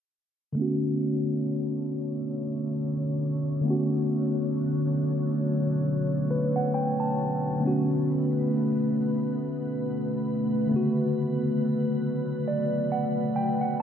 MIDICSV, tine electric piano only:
0, 0, Header, 1, 2, 480
1, 0, Start_track
1, 0, Key_signature, 2, "minor"
1, 0, Tempo, 882353
1, 304, Time_signature, 4, 2, 24, 8
1, 7518, End_track
2, 0, Start_track
2, 0, Title_t, "Tine electric piano"
2, 0, Program_c, 0, 4
2, 286, Note_on_c, 0, 50, 68
2, 298, Note_on_c, 0, 57, 59
2, 311, Note_on_c, 0, 59, 59
2, 323, Note_on_c, 0, 61, 59
2, 336, Note_on_c, 0, 66, 76
2, 400, Control_c, 0, 64, 127
2, 1953, Note_off_c, 0, 50, 0
2, 1959, Note_off_c, 0, 57, 0
2, 1964, Note_on_c, 0, 50, 72
2, 1966, Note_off_c, 0, 59, 0
2, 1972, Note_off_c, 0, 61, 0
2, 1977, Note_on_c, 0, 57, 62
2, 1978, Note_off_c, 0, 66, 0
2, 1989, Note_on_c, 0, 59, 66
2, 1992, Control_c, 0, 64, 0
2, 2002, Note_on_c, 0, 61, 64
2, 2015, Note_on_c, 0, 66, 80
2, 2101, Control_c, 0, 64, 127
2, 3431, Note_on_c, 0, 71, 70
2, 3557, Note_off_c, 0, 71, 0
2, 3568, Note_on_c, 0, 78, 68
2, 3660, Note_off_c, 0, 78, 0
2, 3668, Note_on_c, 0, 79, 68
2, 3796, Note_off_c, 0, 79, 0
2, 3808, Note_on_c, 0, 81, 67
2, 3872, Note_off_c, 0, 50, 0
2, 3879, Note_off_c, 0, 57, 0
2, 3885, Note_off_c, 0, 59, 0
2, 3891, Note_off_c, 0, 61, 0
2, 3897, Note_off_c, 0, 66, 0
2, 4124, Note_off_c, 0, 81, 0
2, 4125, Note_on_c, 0, 50, 64
2, 4137, Note_on_c, 0, 57, 62
2, 4150, Note_on_c, 0, 59, 63
2, 4152, Control_c, 0, 64, 0
2, 4161, Note_on_c, 0, 61, 59
2, 4174, Note_on_c, 0, 66, 74
2, 4238, Control_c, 0, 64, 127
2, 5792, Note_off_c, 0, 50, 0
2, 5799, Note_off_c, 0, 57, 0
2, 5805, Note_off_c, 0, 59, 0
2, 5805, Note_on_c, 0, 50, 73
2, 5811, Note_off_c, 0, 61, 0
2, 5817, Note_off_c, 0, 66, 0
2, 5817, Note_on_c, 0, 57, 68
2, 5829, Note_on_c, 0, 59, 70
2, 5830, Control_c, 0, 64, 0
2, 5841, Note_on_c, 0, 49, 66
2, 5854, Note_on_c, 0, 66, 80
2, 5931, Control_c, 0, 64, 127
2, 6787, Note_on_c, 0, 74, 73
2, 7009, Note_off_c, 0, 74, 0
2, 7028, Note_on_c, 0, 78, 70
2, 7249, Note_off_c, 0, 78, 0
2, 7268, Note_on_c, 0, 79, 70
2, 7395, Note_off_c, 0, 79, 0
2, 7405, Note_on_c, 0, 78, 67
2, 7498, Note_off_c, 0, 78, 0
2, 7518, Note_off_c, 0, 49, 0
2, 7518, Note_off_c, 0, 50, 0
2, 7518, Note_off_c, 0, 57, 0
2, 7518, Note_off_c, 0, 59, 0
2, 7518, Note_off_c, 0, 66, 0
2, 7518, End_track
0, 0, End_of_file